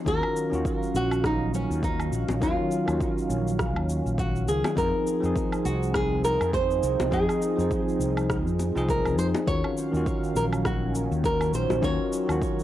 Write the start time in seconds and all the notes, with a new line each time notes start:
0.05 D#2 D#3 F#3 C#4 F4 F#4 A#4 F5, kick, shaker
0.23 low woodblock
0.36 shaker
0.50 D#2 D#3 C#4 F4, shaker
0.55 F#4
0.65 kick, shaker
0.83 shaker
0.94 A#1 F#4, shaker
1.11 low woodblock, shaker
1.24 D#4, kick, cross-stick, shaker
1.54 C#4, shaker
1.70 D#2, shaker
1.83 D#4, kick, shaker
2.00 low woodblock, shaker
2.12 A#1, shaker
2.28 A#1, high bongo, shaker
2.41 D#2 D#3 F#3 C#4 F4, kick, shaker
2.71 shaker
2.86 D#2 D#3 C#4 F4, low woodblock, shaker
2.91 F#3
3.01 kick, shaker
3.18 shaker
3.30 A#1, shaker
3.47 shaker
3.59 kick, cross-stick, shaker
3.76 D#2, low woodblock
3.89 shaker
4.06 A#1, shaker
4.18 F#4, kick, shaker
4.36 shaker
4.47 C#2 G#4, shaker
4.64 high bongo, low woodblock, shaker
4.76 F2 F3 C4 D#4 G#4 A#4, kick, shaker
5.07 shaker
5.20 F2 F3 C4 D#4, shaker
5.26 G#4
5.36 kick, shaker
5.52 low woodblock, shaker
5.65 C2 F#4, shaker
5.83 shaker
5.94 G#4, kick, cross-stick, shaker
6.24 A#4, shaker
6.41 F2, low woodblock, shaker
6.53 C5, kick, shaker
6.71 shaker
6.83 C2, shaker
7.00 C2, high bongo, shaker
7.11 F2 F3 C4 D#4 G#4, kick, shaker
7.29 low woodblock, shaker
7.42 shaker
7.56 F2 F3 C4 D#4, shaker
7.61 C5
7.71 kick, shaker
7.89 shaker
8.00 C2, shaker
8.17 low woodblock, shaker
8.30 kick, cross-stick, shaker
8.47 F2, shaker
8.59 high bongo, shaker
8.75 C2 F3 C4 D#4 G#4, shaker
8.89 A#4, kick, shaker
9.05 C2, low woodblock, shaker
9.18 F2 C5, shaker
9.35 high bongo, shaker
9.46 D#2 D#3 F#3 C#4 F4 F#4 C#5 F5, kick, shaker
9.64 low woodblock
9.77 shaker
9.92 D#2 D#3 C#4 F4, shaker
9.97 F#4
10.06 kick, shaker
10.24 shaker
10.36 A#1 A#4, shaker
10.53 low woodblock, shaker
10.65 F#4, kick, cross-stick, shaker
10.95 shaker
11.11 D#2, shaker
11.24 A#4, kick, shaker
11.41 low woodblock, shaker
11.53 A#1 C5, shaker
11.70 A#1, high bongo, shaker
11.81 D#2 D#3 C#4 D#4 F4 F#4 C#5, kick, shaker
12.13 shaker
12.26 D#2 D#3 C#4 F4, low woodblock, shaker
12.31 F#4
12.42 kick, shaker
12.59 shaker